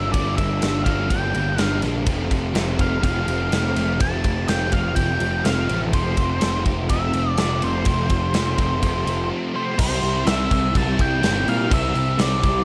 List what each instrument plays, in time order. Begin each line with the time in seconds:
Already playing: picked electric bass G1, overdriven electric guitar D3 G3 A#3 D4, lead electric guitar E5
0.12 picked electric bass G1, overdriven electric guitar G2 D3 G3 A#3 D4, lead electric guitar D5, kick, ride
0.37 picked electric bass G1, overdriven electric guitar G3 A#3 D4, lead electric guitar E5, kick, ride
0.62 picked electric bass G1, overdriven electric guitar D3 G3 A#3 D4, snare, ride
0.84 picked electric bass G1, overdriven electric guitar G3 A#3 D4, lead electric guitar F5, kick, ride
1.09 picked electric bass G1, overdriven electric guitar G2 D3 G3 A#3 D4, lead electric guitar G5, kick, ride
1.33 picked electric bass G1, overdriven electric guitar G3 A#3 D4, ride
1.57 picked electric bass G1, overdriven electric guitar D3 G3 A#3 D4, lead electric guitar F5, snare, ride
1.82 picked electric bass A#1, overdriven electric guitar G3 A#3 D4, snare, ride
2.05 picked electric bass F1, overdriven electric guitar F2 C3 F3 A3 C4, kick, ride
2.31 picked electric bass F1, overdriven electric guitar F3 A3 C4, kick, ride
2.53 picked electric bass F1, overdriven electric guitar C3 F3 A3 C4, snare, ride
2.78 overdriven electric guitar F3 A3 C4, lead electric guitar F5, kick, ride
3.03 picked electric bass F1, overdriven electric guitar F2 C3 F3 A3 C4, lead electric guitar F5, kick, ride
3.27 picked electric bass F1, overdriven electric guitar F3 A3 C4, ride
3.51 picked electric bass F1, overdriven electric guitar C3 F3 A3 C4, snare, ride
3.75 picked electric bass F1, overdriven electric guitar F3 A3 C4, snare, ride
3.99 picked electric bass F1, overdriven electric guitar F2 C3 F3 A3 C4, lead electric guitar A5, kick, ride
4.24 picked electric bass F1, overdriven electric guitar F3 A3 C4, kick, ride
4.47 picked electric bass F1, overdriven electric guitar C3 F3 A3 C4, lead electric guitar G5, snare, ride
4.71 picked electric bass F1, overdriven electric guitar F3 A3 C4, lead electric guitar F5, kick, ride
4.95 picked electric bass F1, overdriven electric guitar F2 C3 F3 A3 C4, lead electric guitar G5, kick, ride
5.20 picked electric bass F1, overdriven electric guitar F3 A3 C4, ride
5.45 picked electric bass F1, overdriven electric guitar C3 F3 A3 C4, lead electric guitar F5, snare, ride
5.69 picked electric bass A1, overdriven electric guitar F3 A3 C4, ride
5.93 picked electric bass F1, overdriven electric guitar F2 C3 F3 A3 C4, lead electric guitar C5, kick, ride
6.17 picked electric bass F1, overdriven electric guitar F3 A3 C4, kick, ride
6.41 picked electric bass F1, overdriven electric guitar C3 F3 A3 C4, snare, ride
6.65 overdriven electric guitar F3 A3 C4, kick, ride
6.88 picked electric bass F1, overdriven electric guitar F2 C3 F3 A3 C4, lead electric guitar E5, kick, ride
7.13 picked electric bass F1, overdriven electric guitar F3 A3 C4, ride
7.37 picked electric bass F1, overdriven electric guitar C3 F3 A3 C4, lead electric guitar D5, snare, ride
7.61 picked electric bass F1, overdriven electric guitar F3 A3 C4, lead electric guitar C5, ride
7.85 picked electric bass F1, overdriven electric guitar F2 C3 F3 A3 C4, kick, ride
8.10 picked electric bass F1, overdriven electric guitar F3 A3 C4, kick, ride
8.34 picked electric bass F1, overdriven electric guitar C3 F3 A3 C4, snare, ride
8.57 picked electric bass F1, overdriven electric guitar F3 A3 C4, kick, ride
8.80 picked electric bass F1, overdriven electric guitar F2 C3 F3 A3 C4, kick, ride
9.05 picked electric bass F1, overdriven electric guitar F3 A3 C4, ride
9.28 overdriven electric guitar C3 F3 A3 C4
9.54 overdriven electric guitar F3 A3 C4, lead electric guitar C5
9.76 picked electric bass C2, overdriven electric guitar C3 G3 C4 E4, lead electric guitar C5, kick, crash
10.02 picked electric bass C2, crash
10.25 picked electric bass C2, overdriven electric guitar C3 G3 C4 E4, lead electric guitar E5, snare, crash
10.51 picked electric bass C2, kick, crash
10.74 picked electric bass C2, overdriven electric guitar C3 G3 C4 E4, lead electric guitar A5, kick, crash
10.97 picked electric bass C2, overdriven electric guitar G3 C4 E4, kick, crash
11.01 lead electric guitar G5
11.21 picked electric bass G1, overdriven electric guitar C3 G3 C4 E4, snare, crash
11.47 picked electric bass A#2, lead electric guitar F5, crash
11.69 picked electric bass C2, overdriven electric guitar C3 G3 C4 E4, kick, crash
11.74 lead electric guitar E5
11.95 picked electric bass C2, crash
12.17 picked electric bass C2, overdriven electric guitar C3 G3 C4 E4, snare, crash
12.21 lead electric guitar D5
12.44 picked electric bass C2, kick, crash